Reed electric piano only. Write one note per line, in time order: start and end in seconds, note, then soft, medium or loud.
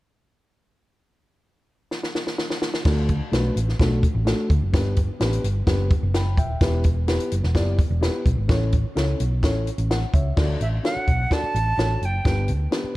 2.85 3.10 A3 medium
2.85 3.11 D4 medium
2.85 3.11 F#4 medium
2.85 3.11 A4 medium
3.32 3.57 A3 medium
3.32 3.58 D4 medium
3.32 3.58 F#4 medium
3.32 3.58 B4 medium
3.80 4.05 A3 medium
3.80 4.05 D4 medium
3.80 4.05 F#4 medium
3.80 4.06 A4 medium
4.25 4.51 A3 medium
4.25 4.52 D4 medium
4.25 4.52 F#4 medium
4.25 4.52 A4 medium
4.73 4.98 B3 medium
4.73 4.99 D4 medium
4.73 4.99 G4 medium
4.73 4.99 B4 medium
5.20 5.45 B3 medium
5.20 5.46 D4 medium
5.20 5.46 G4 medium
5.20 5.46 B4 medium
5.66 5.92 B3 medium
5.66 5.92 D4 medium
5.66 5.93 G4 medium
5.66 5.93 B4 medium
6.15 6.37 G5 medium
6.15 6.37 B5 medium
6.38 6.83 E5 medium
6.38 6.83 G5 medium
6.61 6.87 B3 medium
6.61 6.87 E4 medium
6.61 6.87 G4 medium
6.61 6.88 B4 medium
7.07 7.33 B3 medium
7.07 7.34 E4 medium
7.07 7.34 G4 medium
7.07 7.34 B4 medium
7.55 7.80 B3 medium
7.55 7.81 E4 medium
7.55 7.81 G4 medium
7.55 7.81 D5 medium
8.01 8.27 B3 medium
8.01 8.27 E4 medium
8.01 8.28 G4 medium
8.01 8.28 B4 medium
8.48 8.74 C#4 medium
8.48 8.74 E4 medium
8.48 8.74 A4 medium
8.48 8.75 C#5 medium
8.95 9.21 C#4 medium
8.95 9.22 E4 medium
8.95 9.22 A4 medium
8.95 9.22 C#5 medium
9.43 9.68 C#4 medium
9.43 9.69 E4 medium
9.43 9.69 A4 medium
9.43 9.69 C#5 medium
9.91 10.13 F#5 medium
10.14 10.59 C#5 medium
10.14 10.58 E5 medium
10.37 10.62 D4 medium
10.37 10.62 F#4 medium
10.37 10.63 A4 medium
10.37 10.63 D5 medium
10.83 11.09 D4 medium
10.83 11.10 F#4 medium
10.83 11.10 A4 medium
10.83 11.10 C#5 medium
11.30 11.56 D4 medium
11.30 11.57 F#4 medium
11.30 11.57 A4 medium
11.30 11.57 D5 medium
11.78 12.03 D4 medium
11.78 12.04 F#4 medium
11.78 12.04 A4 medium
11.78 12.04 C#5 medium
12.25 12.50 B3 medium
12.25 12.51 D4 medium
12.25 12.51 G4 medium
12.25 12.51 B4 medium
12.71 12.96 B3 medium
12.71 12.96 D4 medium
12.71 12.96 G4 medium
12.71 12.96 B4 medium